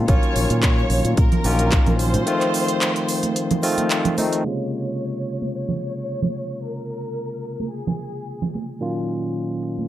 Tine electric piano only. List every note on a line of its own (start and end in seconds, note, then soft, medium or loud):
0.07 1.41 D#3 medium
0.07 1.42 F#3 medium
0.07 1.42 A#3 medium
0.07 1.42 C#4 medium
0.07 1.42 F4 loud
1.44 2.23 D#3 medium
1.44 2.24 F#3 medium
1.44 2.24 A#3 medium
1.44 2.24 C#4 medium
1.44 2.24 F4 loud
2.26 3.60 D#3 medium
2.26 3.60 F3 medium
2.26 3.61 A3 medium
2.26 3.61 C4 medium
2.26 3.61 F4 loud
3.63 4.14 D#3 medium
3.63 4.15 F3 medium
3.63 4.15 A3 medium
3.63 4.15 C4 medium
3.63 4.15 F4 loud
4.18 4.42 D#3 medium
4.18 4.42 F3 medium
4.18 4.42 A3 medium
4.18 4.42 C4 medium
4.18 4.42 D#4 medium
4.44 8.79 C3 medium
4.44 8.78 C#3 medium
4.44 8.78 G#3 medium
4.44 8.79 A#3 medium
8.80 9.88 A#2 medium
8.80 9.88 D#3 medium
8.80 9.88 F#3 medium
8.80 9.88 A#3 medium
8.80 9.88 C#4 medium
8.80 9.88 F4 medium